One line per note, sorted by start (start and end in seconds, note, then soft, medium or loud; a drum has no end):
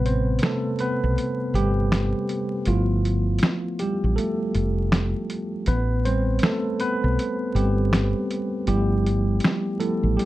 0.00 0.38 A1 loud
0.00 2.63 C3 medium
0.00 1.55 G3 medium
0.00 0.81 B3 medium
0.00 0.80 B4 loud
0.06 0.40 C4 medium
0.06 0.40 C5 medium
0.06 closed hi-hat medium
0.39 0.59 A4 loud
0.39 closed hi-hat medium
0.43 0.60 A3 medium
0.43 finger snap medium
0.43 snare loud
0.79 1.52 B3 medium
0.79 1.51 B4 loud
0.79 closed hi-hat medium
1.04 1.16 B1 medium
1.18 closed hi-hat medium
1.54 2.12 G1 medium
1.54 2.64 G3 medium
1.54 2.71 G4 loud
1.54 closed hi-hat medium
1.92 finger snap medium
1.92 snare loud
1.92 closed hi-hat medium
2.29 closed hi-hat medium
2.65 3.38 G1 loud
2.65 3.77 F3 medium
2.65 3.21 A3 medium
2.65 3.22 B3 medium
2.65 3.22 E4 medium
2.65 3.83 F4 medium
2.65 closed hi-hat medium
3.05 closed hi-hat medium
3.39 closed hi-hat medium
3.43 finger snap medium
3.43 snare loud
3.79 4.16 G3 medium
3.79 4.18 G4 medium
3.79 closed hi-hat medium
4.04 4.16 A1 medium
4.16 5.26 A3 medium
4.16 5.25 A4 medium
4.16 closed hi-hat medium
4.55 5.13 F1 medium
4.55 closed hi-hat medium
4.92 finger snap medium
4.92 snare loud
4.92 closed hi-hat medium
5.30 closed hi-hat medium
5.66 6.38 A1 loud
5.66 6.03 B3 medium
5.66 6.02 B4 loud
5.66 closed hi-hat medium
6.05 7.54 G3 medium
6.05 6.41 C4 medium
6.05 6.43 C5 medium
6.05 closed hi-hat medium
6.39 closed hi-hat medium
6.43 6.78 A3 medium
6.43 6.81 A4 loud
6.43 finger snap medium
6.43 snare loud
6.80 7.52 B3 medium
6.80 7.57 B4 loud
6.80 closed hi-hat medium
7.04 7.17 B1 medium
7.19 closed hi-hat medium
7.55 8.13 G1 medium
7.55 8.64 G3 medium
7.55 7.89 B3 soft
7.55 7.89 C4 medium
7.55 8.66 G4 loud
7.55 closed hi-hat medium
7.93 finger snap medium
7.93 snare loud
7.93 closed hi-hat medium
8.31 closed hi-hat medium
8.67 9.38 G1 loud
8.67 9.76 F3 medium
8.67 9.76 G3 medium
8.67 9.76 A3 medium
8.67 9.76 B3 medium
8.67 9.76 E4 medium
8.67 9.76 G4 loud
8.67 closed hi-hat medium
9.06 closed hi-hat medium
9.40 closed hi-hat medium
9.44 finger snap medium
9.44 snare loud
9.80 10.14 F3 soft
9.80 10.15 A3 medium
9.80 10.14 B3 soft
9.80 10.14 E4 medium
9.80 10.14 A4 medium
9.80 closed hi-hat medium
10.03 10.16 A1 medium
10.17 10.25 G3 medium
10.17 10.25 G4 medium
10.17 closed hi-hat medium